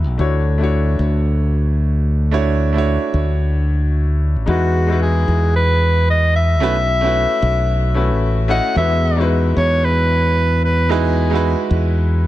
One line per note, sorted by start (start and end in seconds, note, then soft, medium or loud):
0.00 0.21 G#3 medium
0.00 0.21 D#4 medium
0.00 0.19 E4 medium
0.00 0.20 F#4 medium
0.00 0.21 B4 loud
0.08 0.16 B1 medium
0.18 0.95 D2 medium
0.18 0.56 A3 medium
0.18 0.57 D4 medium
0.18 0.58 E4 medium
0.18 0.58 F#4 medium
0.18 0.58 C#5 medium
0.58 2.29 A3 medium
0.58 2.30 D4 medium
0.58 2.30 E4 medium
0.62 2.31 F#4 medium
0.62 2.32 C#5 medium
0.99 2.96 D2 medium
2.31 2.45 A3 medium
2.31 2.45 D4 medium
2.31 2.46 E4 medium
2.31 2.46 F#4 medium
2.31 2.46 C#5 loud
2.73 4.43 A3 medium
2.73 4.44 D4 medium
2.73 4.45 E4 medium
2.77 4.45 F#4 medium
2.77 4.46 C#5 loud
3.14 4.37 D2 medium
4.37 4.45 A1 medium
4.46 5.23 E2 loud
4.46 4.85 G#3 medium
4.46 4.86 D#4 medium
4.46 4.86 E4 medium
4.46 4.86 F#4 medium
4.46 4.98 F#4 medium
4.46 4.87 B4 medium
4.87 6.58 G#3 medium
4.87 6.58 D#4 medium
4.87 6.59 E4 medium
4.91 6.60 F#4 medium
4.91 6.60 B4 medium
5.02 5.52 G#4 medium
5.28 6.62 E2 medium
5.56 6.05 B4 loud
6.10 6.34 D#5 loud
6.36 8.19 E5 loud
6.60 7.25 B1 loud
6.60 6.74 A3 loud
6.60 6.74 C#4 medium
6.60 6.75 E4 medium
6.60 6.75 F#4 medium
6.60 6.75 B4 loud
7.01 7.92 A3 medium
7.01 7.93 C#4 medium
7.01 7.93 E4 medium
7.05 7.94 F#4 medium
7.05 7.95 B4 medium
7.42 8.11 B1 loud
7.94 8.46 A3 medium
7.94 8.46 C#4 medium
7.94 8.47 E4 medium
7.94 8.47 F#4 medium
7.94 8.47 B4 medium
8.11 8.59 A1 medium
8.48 8.73 A3 medium
8.48 8.73 C#4 medium
8.48 8.73 E4 medium
8.48 8.74 F#4 medium
8.48 8.74 D#5 loud
8.48 8.75 F#5 loud
8.75 9.52 E2 loud
8.75 9.14 G#3 medium
8.75 9.14 B3 medium
8.75 9.15 E4 medium
8.75 9.15 F#4 medium
8.75 9.16 B4 medium
8.75 9.26 E5 loud
9.16 10.86 G#3 medium
9.16 10.87 D#4 medium
9.16 10.88 E4 medium
9.20 10.88 F#4 medium
9.20 10.89 B4 medium
9.57 11.54 E2 loud
9.57 9.86 C#5 loud
9.84 10.64 B4 loud
10.65 10.93 B4 loud
10.89 11.02 G#3 medium
10.89 11.03 D#4 medium
10.89 11.03 E4 medium
10.89 11.03 F#4 medium
10.89 11.71 G#4 medium
10.89 11.04 B4 loud
11.30 12.27 G#3 medium
11.30 12.27 D#4 medium
11.30 12.27 E4 medium
11.30 12.27 F#4 medium
11.35 12.27 B4 loud
11.71 12.27 E2 loud